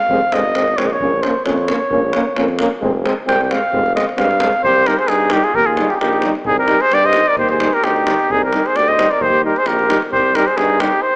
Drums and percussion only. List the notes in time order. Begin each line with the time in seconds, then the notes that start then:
0.09 davul low
0.21 davul high
0.32 davul high
0.55 davul high
0.68 davul high
0.78 davul high
0.90 davul high
1.00 davul low
1.23 davul high
1.46 davul high
1.58 davul high
1.68 davul high
1.91 davul low
2.13 davul high
2.36 davul high
2.48 davul high
2.59 davul high
2.82 davul low
3.06 davul high
3.29 davul high
3.41 davul high
3.51 davul high
3.73 davul low
3.86 davul high
3.97 davul high
4.09 davul high
4.18 davul high
4.31 davul high
4.40 davul high
4.53 davul high
4.64 davul low
4.86 davul high
4.99 davul high
5.08 davul high
5.21 davul high
5.30 davul high
5.44 davul high
5.54 davul low
5.77 davul high
5.90 davul high
6.01 davul high
6.13 davul high
6.22 davul high
6.35 davul high
6.45 davul low
6.68 davul high
6.81 davul high
6.92 davul high
7.03 davul high
7.13 davul high
7.26 davul high
7.37 davul low
7.49 davul high
7.60 davul high
7.73 davul high
7.84 davul high
7.96 davul high
8.07 davul high
8.19 davul high
8.30 davul low
8.53 davul high
8.66 davul high
8.76 davul high
8.88 davul high
8.99 davul high
9.11 davul high
9.21 davul low
9.56 davul high
9.66 davul high
9.79 davul high
9.90 davul high
10.02 davul high
10.13 davul low
10.35 davul high
10.48 davul high
10.58 davul high
10.70 davul high
10.80 davul high
10.92 davul high